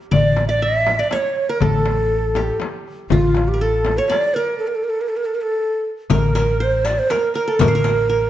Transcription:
0.11 A1 D5, frame drum, darbuka dum
0.36 darbuka tek, frame drum
0.48 D5 E5
0.62 E5, darbuka ka
0.87 darbuka tek, frame drum
0.99 D5
1.11 C#5, darbuka tek, frame drum
1.36 darbuka ka
1.49 A#4
1.60 A1 A4, darbuka dum, frame drum
1.85 darbuka tek, frame drum
2.12 darbuka ka
2.35 G4, darbuka tek, frame drum
2.60 darbuka tek, frame drum
2.87 darbuka ka
3.10 A1 F4, frame drum, darbuka dum
3.35 darbuka tek, frame drum
3.48 G4
3.54 A#4
3.61 A4, darbuka ka
3.85 darbuka tek, frame drum
3.98 C#5
4.09 D5, darbuka tek, frame drum
4.34 A#4, darbuka ka
4.59 A4
4.67 A#4
4.75 A4
4.84 A#4
4.90 A4
5.01 A#4
5.09 A4
5.17 A#4
5.25 A4
5.35 A#4
5.42 A4
6.10 A1 A#4, riq, darbuka dum, frame drum
6.35 A#4, riq, darbuka tek, frame drum
6.60 C5
6.85 D5, riq, darbuka tek, frame drum
6.99 C5
7.10 A#4, riq, darbuka tek, frame drum
7.34 A#4, riq, darbuka ka
7.48 A4
7.59 A1 A#4, riq, darbuka dum, frame drum
7.68 C5
7.75 A#4
7.84 riq, darbuka tek, frame drum
8.09 A#4

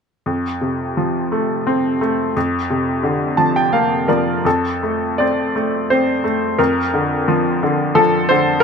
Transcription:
0.26 F2
0.61 C3
0.97 F3
1.32 A3
1.67 C4
2.01 A3
2.37 F2
2.70 C3
3.03 D3
3.37 F3 A5
3.56 G5
3.73 A#3 F5
4.08 F3 A#4 D5
4.45 F2 A4
4.83 A3
5.18 C4 D5
5.56 A3
5.90 C4 C5
6.24 A3
6.58 F2 A#4
6.94 D3
7.28 F3
7.63 D3
7.95 F3 A4
8.29 D3 C5
8.60 A#4

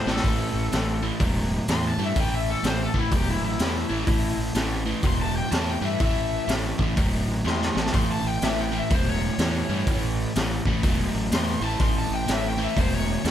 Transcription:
Already playing: C5
0.06 A1 A2 E3, snare
0.12 A4
0.17 snare
0.24 A1 A2 E3, kick, open hi-hat
0.54 A1
0.72 A1 A2 E3, snare, open hi-hat
1.03 A2 E3
1.20 E1 A2 F#3, kick, open hi-hat
1.68 E2 A2 E3 C6, snare, open hi-hat
1.88 A5
1.97 G2 A2 E3
2.04 E5
2.16 A1 A2 E3, kick, open hi-hat
2.20 G5
2.35 E5
2.50 A4
2.63 A1 A2 E3 C5, snare, open hi-hat
2.83 A4
2.94 A1 A2 E3, kick
2.99 E4
3.11 E1 A2 F#3 G4, kick, open hi-hat
3.30 E4
3.41 A1
3.45 E4
3.59 E2 A2 E3, snare, open hi-hat
3.89 A1 A2 E3
4.07 A1 A2 E3, kick, open hi-hat
4.37 A1
4.55 A1 A2 E3, snare, open hi-hat
4.86 A2 E3
5.03 E1 A2 F#3 C6, kick, open hi-hat
5.22 A5
5.38 G5
5.51 E2 A2 E3 A5, snare, open hi-hat
5.70 G5
5.81 G2 A2 E3 E5
5.99 A1 A2 E3, kick, open hi-hat
6.04 E5
6.48 A1 A2 E3, snare, open hi-hat
6.78 A1 A2 E3, kick
6.96 E1 A2 F#3, kick, open hi-hat
7.27 A1
7.45 E2 A2 E3 C6, snare
7.62 snare
7.75 A1 A2 E3 A5, snare
7.86 snare
7.93 A1 A2 E3 C6, kick, open hi-hat
8.12 A5
8.23 A1 G5
8.42 A1 A2 E3 E5, snare, open hi-hat
8.60 G5
8.72 A2 E3
8.78 E5
8.90 E1 A2 F#3 C5, kick, open hi-hat
9.08 C#5
9.38 E2 A2 E3, snare, open hi-hat
9.69 G2 A2 E3
9.86 A1 A2 E3, kick, open hi-hat
10.35 A1 A2 E3, snare, open hi-hat
10.66 A1 A2 E3, kick
10.83 E1 A2 F#3, kick, open hi-hat
11.14 A1
11.31 E2 A2 E3 C6, snare, open hi-hat
11.61 A1 A2 E3 A5
11.80 A1 A2 E3 C6, kick, open hi-hat
11.98 A5
12.10 A1 G5
12.28 A1 A2 E3, snare, open hi-hat
12.32 E5
12.48 G5
12.58 A2 E3
12.63 E5
12.76 E1 A2 F#3 C5, kick, open hi-hat
12.94 C#5
13.24 E2 A2 E3, snare, open hi-hat

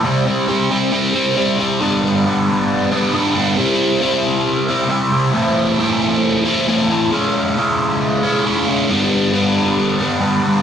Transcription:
0.03 C3 G3 C4
0.26 C3 G3 C4
0.47 C3 G3 C4
0.70 C3 G3 C4
0.92 C3 G3 C4
1.14 C3 G3 C4
1.36 C3 G3 C4
1.59 C3 G3 C4
1.80 G2 D3 G3 B3 D4
2.26 D3 G3 B3 D4
2.91 G3 B3 D4
3.13 G2 D3 G3 B3 D4
3.35 G3 B3 D4
3.57 C3 G3 C4 E4
4.01 C3 G3 C4 E4
4.68 G3 C4 E4
4.89 C3 G3 C4 E4
5.12 G3 C4 E4
5.34 A2 E3 A3 C4 E4
5.78 E3 A3 C4 E4
6.45 A3 C4 E4
6.67 A2 E3 A3 C4 E4
6.89 A3 C4 E4
7.11 C#3 G#3 C#4 E4
7.56 C#3 G#3 C#4 E4
8.23 G#3 C#4 E4
8.45 C#3 G#3 C#4 E4
8.67 G#3 C#4 E4
8.89 G2 D3 G3 B3 D4
9.32 D3 G3 B3 D4
9.99 G3 B3 D4
10.20 G2 D3 G3 B3 D4
10.44 G3 B3 D4

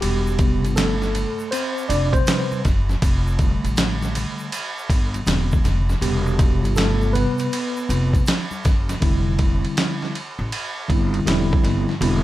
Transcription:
0.01 E1 G3 G4, ride, shaker
0.27 shaker
0.39 C3 G3 B3, kick, ride, high conga, shaker
0.64 G1, ride, shaker
0.76 A3 A4, snare, hi-hat pedal, ride, high conga, low conga, shaker
1.02 snare, high conga, shaker
1.15 ride, low conga, shaker
1.39 shaker
1.51 C4 C5, ride, shaker
1.78 shaker
1.89 F1 D4 D5, ride, shaker
2.13 C4 C5, kick, ride, high conga, shaker
2.27 C3 G3 B4, snare, hi-hat pedal, ride, shaker
2.52 high conga, shaker
2.65 F#1, kick, snare, ride, low conga, shaker
2.89 snare, shaker
3.02 F1, kick, ride, shaker
3.27 shaker
3.39 D3 G3 A3, kick, ride, high conga, shaker
3.64 A1, ride, shaker
3.77 snare, hi-hat pedal, ride, high conga, low conga, shaker
4.02 snare, high conga, shaker
4.15 ride, low conga, shaker
4.39 shaker
4.52 ride, shaker
4.78 shaker
4.89 G1, kick, ride, shaker
5.14 ride, high conga, shaker
5.27 E1 D3 G#3 C4, snare, hi-hat pedal, ride, shaker
5.52 kick, high conga, shaker
5.64 F1, snare, ride, low conga, shaker
5.89 snare, shaker
6.01 E1 C3 G3 B3 G4, ride, shaker
6.26 shaker
6.39 kick, ride, high conga, shaker
6.64 G1, ride, shaker
6.76 A3 A4, snare, hi-hat pedal, ride, high conga, low conga, shaker
7.02 high conga, shaker
7.13 C3 G3 B3 B4, ride, low conga, shaker
7.38 ride, shaker
7.53 ride, shaker
7.77 shaker
7.89 F1, ride, shaker
8.13 kick, ride, high conga, shaker
8.26 snare, hi-hat pedal, ride, shaker
8.51 high conga, shaker
8.64 F#1, kick, snare, ride, low conga, shaker
8.89 snare, ride, shaker
9.00 F1 D3 G3 C4 E4, kick, ride
9.39 kick, ride
9.65 ride
9.77 snare, hi-hat pedal, ride
10.02 snare
10.15 ride
10.39 A1
10.52 ride
10.89 G1 D3 G3 C4 E4, kick, ride
11.14 ride
11.26 E1 D3 G3 C4 E4, snare, hi-hat pedal, ride
11.53 kick
11.63 G1, snare, ride
11.89 snare
12.01 E1 D3 G3 C4 E4, ride

